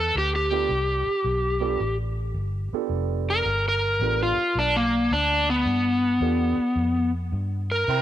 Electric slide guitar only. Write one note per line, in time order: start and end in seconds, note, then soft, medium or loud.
0.00 0.16 A4 medium
0.18 0.34 G4 medium
0.36 1.96 G4 medium
3.30 3.64 A#4 medium
3.68 4.20 A#4 loud
4.23 4.57 F4 medium
4.59 4.75 D4 medium
4.76 5.11 A#3 medium
5.13 5.48 D4 medium
5.50 7.10 B3 medium
7.71 8.02 A#4 medium